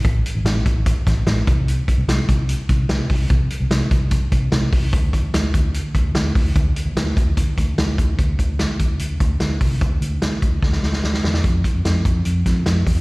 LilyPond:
<<
  \new Staff \with { instrumentName = "Fingered electric bass" } { \clef bass \time 4/4 \key d \minor \tempo 4 = 147 a,,8 r16 a,,16 a,,8 a,,8. r16 a,,8 a,,8 c,8~ | c,8 r16 c,16 c,8 c,8. r16 c,8 c,8 c,8 | c,8 r16 c,16 c,8 c,8. r16 c,8 c,8 c,8 | d,8 r16 d,16 d,8 d,8. r16 d,8 d,8 d,8 |
d,8 r16 d,16 d,8 d,8. r16 d,8 d,8 d,8 | d,8 d,8. r16 d,8 d,8 d,8 d,8 c,8 | d,8 d,8. r16 d,8 d,8 d,8 d,8 e,8 | f,8 r16 f,16 f,8 f,8 f,8 f,8 f,8 e,8 | }
  \new DrumStaff \with { instrumentName = "Drums" } \drummode { \time 4/4 <hh bd>8 hh8 <hh sn>8 <hh bd>8 <hh bd>8 <hh bd sn>8 <hh sn>8 <hh bd>8 | hh8 <hh bd>8 <hh sn>8 <hh bd>8 hh8 <hh bd>8 <hh sn>8 <hho bd>8 | <hh bd>8 hh8 <hh sn>8 <hh bd>8 <hh bd>8 <hh bd>8 <hh sn>8 <hho bd>8 | <hh bd>8 <hh bd>8 <hh sn>8 <hh bd>8 hh8 <hh bd>8 <hh sn>8 <hho bd>8 |
<hh bd>8 hh8 <hh sn>8 <hh bd>8 <hh bd>8 <hh bd>8 <hh sn>8 <hh bd>8 | <hh bd>8 <hh bd>8 <hh sn>8 <hh bd>8 hh8 <hh bd>8 <hh sn>8 <hho bd>8 | <hh bd>8 hh8 <hh sn>8 <hh bd>8 <bd sn>16 sn16 sn16 sn16 sn16 sn16 sn16 sn16 | <hh bd>8 <hh bd>8 <hh sn>8 <hh bd>8 hh8 <hh bd sn>8 <hh sn>8 <hho bd>8 | }
>>